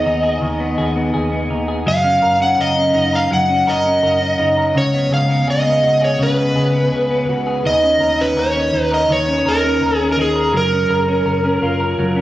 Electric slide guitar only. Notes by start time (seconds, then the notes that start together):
Already playing: D#5
1.88 F5
2.42 F#5
2.61 D#5
3.15 F5
3.33 F#5
3.69 D#5
4.78 C#5
5.14 F5
5.50 D#5
6.04 C#5
6.23 B4
7.67 D#5
8.21 B4
8.39 C#5
8.82 B4
8.94 D#5
9.12 C#5
9.48 A#4
9.97 G#4
10.12 A#4
10.21 G#4
10.57 A#4